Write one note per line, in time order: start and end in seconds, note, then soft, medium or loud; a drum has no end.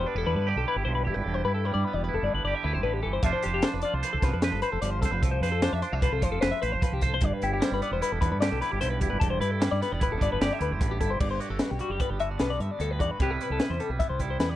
0.00 0.84 G2 medium
0.00 1.64 G3 medium
0.00 1.84 B3 medium
0.06 0.16 D4 medium
0.06 0.16 B4 medium
0.15 0.24 E1 medium
0.15 0.65 E4 soft
0.15 0.26 A4 medium
0.26 0.34 E2 medium
0.26 1.25 D3 medium
0.26 0.35 B4 medium
0.35 0.52 G2 medium
0.35 0.48 B4 medium
0.47 2.45 G4 medium
0.47 0.57 D5 medium
0.56 0.64 B1 medium
0.56 0.66 A4 medium
0.68 1.06 E4 medium
0.68 0.77 B4 medium
0.76 0.84 G1 medium
0.76 0.84 G4 medium
0.85 1.08 B1 medium
0.85 1.26 G2 medium
0.85 0.95 C5 medium
0.95 1.04 B4 medium
1.05 1.14 E1 loud
1.05 1.47 E4 medium
1.05 1.14 G4 medium
1.14 1.24 G1 medium
1.14 1.24 B4 medium
1.24 1.42 E1 loud
1.24 3.25 G2 medium
1.24 1.34 A4 medium
1.34 1.44 C5 medium
1.45 1.71 G2 medium
1.45 2.08 E4 medium
1.45 1.54 B4 medium
1.54 1.65 A4 medium
1.65 3.24 G3 medium
1.65 1.73 B4 medium
1.74 1.83 G2 medium
1.74 1.85 D5 medium
1.85 3.24 B3 medium
1.85 1.93 B4 medium
1.93 2.11 E1 medium
1.93 2.04 D5 medium
2.04 2.14 B4 medium
2.09 2.65 E4 medium
2.13 2.22 E1 medium
2.13 2.24 A4 medium
2.23 2.32 G1 medium
2.23 2.83 D3 medium
2.23 2.34 D5 medium
2.34 2.42 G1 medium
2.34 2.44 B4 medium
2.44 2.52 G1 medium
2.44 3.25 G4 medium
2.44 2.55 D5 medium
2.55 2.64 E5 medium
2.64 2.76 D2 medium
2.64 3.25 E4 medium
2.64 2.73 B4 medium
2.73 2.83 G1 medium
2.73 2.83 C5 medium
2.83 3.02 A1 medium
2.83 3.02 D3 medium
2.83 2.94 B4 medium
2.94 3.02 G4 medium
3.03 3.22 G1 medium
3.03 3.23 E3 medium
3.03 3.13 A4 medium
3.13 3.23 C5 medium
3.23 3.32 F1 loud
3.23 4.24 F3 medium
3.23 3.62 D4 medium
3.23 3.84 F4 medium
3.23 3.45 C5 medium
3.23 3.32 E5 medium
3.23 kick loud
3.23 closed hi-hat medium
3.33 3.43 C5 medium
3.42 3.62 F1 medium
3.42 3.53 G4 medium
3.42 4.02 C5 medium
3.42 closed hi-hat medium
3.54 3.64 G4 medium
3.62 5.46 D4 medium
3.62 3.74 C5 medium
3.62 snare loud
3.62 closed hi-hat medium
3.74 3.82 F1 medium
3.74 3.82 B4 medium
3.82 5.21 F4 medium
3.82 3.94 D5 medium
3.82 closed hi-hat medium
3.93 4.02 C2 medium
3.93 4.04 C5 medium
4.03 4.12 B4 medium
4.03 4.43 C5 medium
4.03 closed hi-hat loud
4.13 4.22 C2 medium
4.13 4.23 A4 medium
4.22 4.31 C2 medium
4.22 4.82 F3 medium
4.22 4.32 B4 medium
4.22 kick medium
4.22 snare soft
4.22 closed hi-hat medium
4.33 4.51 F2 medium
4.33 4.42 B4 medium
4.42 4.63 B4 medium
4.42 4.52 C5 medium
4.42 snare loud
4.42 closed hi-hat medium
4.52 4.61 G1 medium
4.52 4.62 A4 medium
4.62 4.72 B4 medium
4.62 5.03 C5 medium
4.62 closed hi-hat medium
4.72 4.81 F1 medium
4.72 4.81 A4 medium
4.82 5.03 G1 medium
4.82 5.21 F3 medium
4.82 4.90 D5 medium
4.82 closed hi-hat loud
4.90 5.01 C5 medium
5.02 5.11 C2 loud
5.02 5.12 A4 medium
5.02 5.22 C5 medium
5.02 kick medium
5.02 snare soft
5.02 closed hi-hat medium
5.12 5.21 F1 medium
5.12 5.22 B4 medium
5.22 5.40 C2 loud
5.22 6.20 F3 medium
5.22 5.31 A4 medium
5.22 kick loud
5.22 closed hi-hat loud
5.31 5.42 C5 medium
5.41 5.68 F2 medium
5.41 5.52 B4 medium
5.41 6.02 C5 medium
5.41 snare soft
5.41 closed hi-hat medium
5.52 5.62 A4 medium
5.62 5.83 D4 medium
5.62 5.73 C5 medium
5.62 snare loud
5.62 closed hi-hat medium
5.73 5.82 F2 medium
5.73 5.82 E5 medium
5.82 5.93 D4 medium
5.82 5.93 C5 medium
5.82 closed hi-hat medium
5.93 6.10 C2 medium
5.93 7.22 F4 soft
5.93 6.03 E5 medium
6.02 6.13 B4 medium
6.02 6.41 C5 medium
6.02 kick loud
6.02 closed hi-hat medium
6.12 6.21 C2 medium
6.12 6.23 A4 medium
6.21 6.31 F1 loud
6.21 6.80 F3 medium
6.21 6.31 C5 medium
6.21 kick medium
6.21 closed hi-hat medium
6.31 6.41 F1 medium
6.31 6.41 A4 medium
6.41 6.51 F1 medium
6.41 6.62 B4 medium
6.41 6.52 C5 medium
6.41 snare loud
6.41 closed hi-hat medium
6.51 6.62 E5 medium
6.62 6.75 A1 medium
6.62 6.72 B4 medium
6.62 7.01 C5 medium
6.62 closed hi-hat medium
6.72 6.82 F1 medium
6.72 6.83 C5 medium
6.81 7.19 F3 medium
6.81 6.93 B4 medium
6.81 kick loud
6.81 closed hi-hat medium
6.92 7.18 C2 medium
6.92 7.02 G4 medium
7.01 7.12 A4 medium
7.01 7.20 C5 medium
7.01 kick medium
7.01 closed hi-hat medium
7.14 7.24 C5 medium
7.21 7.31 G1 loud
7.21 8.81 G2 medium
7.21 7.33 D5 medium
7.21 kick loud
7.21 closed hi-hat medium
7.33 7.43 B4 medium
7.42 7.60 G1 medium
7.42 8.01 E4 medium
7.42 7.52 G4 medium
7.42 closed hi-hat medium
7.53 7.63 G4 medium
7.60 9.59 G3 medium
7.60 7.73 C5 medium
7.60 snare loud
7.60 closed hi-hat loud
7.72 7.81 G1 medium
7.72 7.82 B4 medium
7.82 9.80 B3 medium
7.82 7.92 D5 medium
7.82 closed hi-hat medium
7.91 8.00 E1 medium
7.91 8.02 C5 medium
8.01 8.61 E4 medium
8.01 8.12 B4 medium
8.01 closed hi-hat medium
8.12 8.21 E1 medium
8.12 8.21 A4 medium
8.21 8.31 E2 medium
8.21 9.21 D3 medium
8.21 8.31 B4 medium
8.21 kick medium
8.21 closed hi-hat medium
8.32 8.49 G2 medium
8.32 8.40 B4 medium
8.40 10.40 G4 medium
8.40 8.51 D5 medium
8.40 snare loud
8.40 closed hi-hat loud
8.52 8.61 B1 medium
8.52 8.61 A4 medium
8.61 9.01 E4 medium
8.61 8.72 B4 medium
8.61 snare soft
8.61 closed hi-hat medium
8.72 8.81 G1 medium
8.72 8.80 G4 medium
8.81 9.03 B1 medium
8.81 9.23 G2 medium
8.81 8.90 C5 medium
8.81 closed hi-hat loud
8.91 9.00 B4 medium
9.00 9.10 E1 medium
9.00 9.19 E4 medium
9.00 9.10 G4 medium
9.00 kick medium
9.00 closed hi-hat medium
9.10 9.21 G1 medium
9.10 9.19 B4 medium
9.20 9.39 E1 loud
9.20 10.79 G2 medium
9.20 9.30 A4 medium
9.20 kick loud
9.20 closed hi-hat medium
9.30 9.41 C5 medium
9.40 9.67 G2 medium
9.40 9.99 E4 medium
9.40 9.51 B4 medium
9.40 closed hi-hat medium
9.51 9.62 A4 medium
9.60 11.78 G3 medium
9.60 9.71 B4 medium
9.60 snare loud
9.60 closed hi-hat medium
9.71 9.80 G2 medium
9.71 9.81 D5 medium
9.81 11.99 B3 medium
9.81 9.92 B4 medium
9.81 snare soft
9.81 closed hi-hat medium
9.92 10.09 E1 medium
9.92 10.02 D5 medium
10.00 10.58 E4 medium
10.00 10.12 B4 medium
10.00 kick loud
10.00 closed hi-hat medium
10.12 10.20 E1 medium
10.12 10.22 A4 medium
10.19 10.30 G1 medium
10.19 11.20 D3 medium
10.19 10.32 D5 medium
10.19 kick medium
10.19 closed hi-hat medium
10.32 10.40 G1 medium
10.32 10.42 B4 medium
10.41 10.50 G1 medium
10.41 13.20 G4 medium
10.41 10.53 D5 medium
10.41 snare loud
10.41 closed hi-hat medium
10.53 10.61 E5 medium
10.59 10.72 D2 medium
10.59 10.99 E4 medium
10.59 10.72 B4 medium
10.59 closed hi-hat medium
10.71 10.80 G1 medium
10.71 10.82 C5 medium
10.80 10.99 A1 medium
10.80 11.18 G2 medium
10.80 10.91 B4 medium
10.80 kick loud
10.80 closed hi-hat medium
10.91 11.00 G4 medium
11.00 11.19 G1 medium
11.00 11.18 E4 medium
11.00 11.11 A4 medium
11.00 kick medium
11.00 closed hi-hat medium
11.10 11.20 C5 medium
11.20 11.38 G1 medium
11.20 12.78 G2 medium
11.20 11.30 D5 medium
11.20 kick loud
11.20 crash medium
11.31 11.40 C5 medium
11.40 12.19 F#4 medium
11.40 11.50 D5 medium
11.40 closed hi-hat medium
11.50 11.59 G1 medium
11.50 11.61 A4 medium
11.59 11.71 B4 medium
11.59 snare loud
11.59 closed hi-hat medium
11.71 11.80 B1 medium
11.71 11.80 G4 medium
11.79 13.20 G3 medium
11.79 11.91 F#4 medium
11.79 closed hi-hat medium
11.89 11.99 F#1 medium
11.89 12.00 G4 medium
12.00 12.38 B3 medium
12.00 12.10 B4 medium
12.00 kick loud
12.00 closed hi-hat medium
12.10 12.37 G1 medium
12.10 12.20 G4 medium
12.19 13.20 D3 medium
12.19 12.98 F#4 medium
12.19 12.30 E5 medium
12.19 closed hi-hat medium
12.31 12.41 D5 medium
12.38 12.58 B1 medium
12.38 13.21 B3 medium
12.38 12.51 B4 medium
12.38 snare loud
12.38 closed hi-hat medium
12.50 12.61 D5 medium
12.60 12.69 G2 medium
12.60 12.71 E5 medium
12.60 closed hi-hat medium
12.71 12.81 D5 medium
12.79 12.99 D2 medium
12.79 13.19 G2 medium
12.79 12.91 A4 medium
12.79 closed hi-hat medium
12.91 13.01 B4 medium
12.99 13.09 E2 medium
12.99 13.17 F#4 medium
12.99 13.11 D5 medium
12.99 kick medium
12.99 closed hi-hat medium
13.11 13.21 B4 medium
13.19 13.37 C2 loud
13.19 14.56 C3 medium
13.19 13.79 G3 medium
13.19 13.99 B3 medium
13.19 13.40 E4 medium
13.19 13.31 G4 medium
13.19 14.56 B4 medium
13.19 kick loud
13.19 closed hi-hat medium
13.31 13.41 A4 medium
13.41 14.20 E4 medium
13.41 13.51 B4 medium
13.41 closed hi-hat medium
13.50 13.59 C2 medium
13.50 13.61 A4 medium
13.59 13.71 B4 medium
13.59 snare loud
13.59 closed hi-hat medium
13.70 13.79 E2 medium
13.70 13.80 C5 medium
13.80 14.20 G3 medium
13.80 13.90 A4 medium
13.80 closed hi-hat medium
13.90 13.99 B1 medium
13.90 14.00 B4 medium
13.99 14.41 B3 medium
13.99 14.09 E5 medium
13.99 kick loud
13.99 closed hi-hat medium
14.09 14.36 C2 medium
14.09 14.20 C5 medium
14.19 14.56 G3 medium
14.19 14.56 E4 medium
14.19 14.30 G4 medium
14.19 kick medium
14.19 closed hi-hat medium
14.30 14.40 C5 medium
14.39 14.56 E2 medium
14.39 14.56 B3 medium
14.39 14.49 B4 medium
14.39 snare loud
14.39 closed hi-hat medium
14.49 14.56 D5 medium